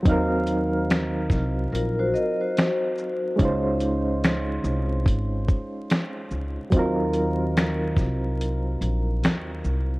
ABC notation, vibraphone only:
X:1
M:4/4
L:1/16
Q:"Swing 16ths" 1/4=72
K:Ebdor
V:1 name="Vibraphone"
z8 [FB] [Gc] [Be] [Gc]4- [Gc] | z16 | z16 |]